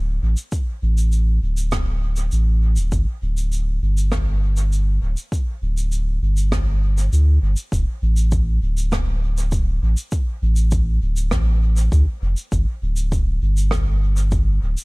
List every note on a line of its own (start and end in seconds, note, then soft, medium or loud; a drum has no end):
0.00 0.19 D1 medium
0.22 0.36 A1 medium
0.37 shaker medium
0.52 kick loud
0.52 shaker medium
0.82 1.39 A1 medium
0.98 shaker medium
1.12 shaker medium
1.42 2.29 D1 medium
1.57 shaker medium
1.72 kick loud
1.72 cross-stick medium
1.72 shaker medium
2.16 shaker medium
2.32 2.79 A1 medium
2.32 shaker medium
2.76 2.90 D1 medium
2.76 shaker medium
2.92 3.05 G1 loud
2.92 kick loud
2.92 shaker medium
3.22 3.79 D1 medium
3.37 shaker medium
3.52 shaker medium
3.82 4.99 G1 medium
3.98 shaker medium
4.12 kick loud
4.12 cross-stick medium
4.12 shaker medium
4.57 shaker medium
4.73 shaker medium
5.02 5.15 D1 medium
5.17 shaker medium
5.32 kick loud
5.32 shaker medium
5.62 6.19 D1 medium
5.78 shaker medium
5.92 shaker medium
6.22 7.09 G1 medium
6.37 shaker medium
6.52 kick loud
6.52 cross-stick medium
6.52 shaker medium
6.98 shaker medium
7.12 7.39 D2 medium
7.12 shaker medium
7.42 7.55 G1 medium
7.57 shaker medium
7.72 7.85 D1 loud
7.72 kick loud
7.72 shaker medium
8.02 8.59 A1 medium
8.17 shaker medium
8.32 kick loud
8.32 shaker medium
8.62 9.79 D1 medium
8.77 shaker medium
8.92 kick loud
8.92 cross-stick medium
8.92 shaker medium
9.38 shaker medium
9.52 kick loud
9.52 shaker medium
9.82 9.95 A1 medium
9.97 shaker medium
10.12 kick loud
10.12 shaker medium
10.42 10.99 A1 medium
10.56 shaker medium
10.71 kick loud
10.71 shaker medium
11.02 11.31 D1 medium
11.17 shaker medium
11.31 11.89 A1 medium
11.31 kick loud
11.31 cross-stick medium
11.31 shaker medium
11.77 shaker medium
11.92 12.05 D2 medium
11.92 kick loud
11.92 shaker medium
12.22 12.35 F1 medium
12.37 shaker medium
12.52 12.65 G1 loud
12.52 kick loud
12.52 shaker medium
12.82 13.39 D1 medium
12.97 shaker medium
13.12 kick loud
13.12 shaker medium
13.42 14.59 G1 loud
13.57 shaker medium
13.71 kick loud
13.71 cross-stick medium
13.71 shaker medium
14.17 shaker medium
14.31 kick loud
14.31 shaker medium
14.62 14.76 D1 medium
14.77 shaker medium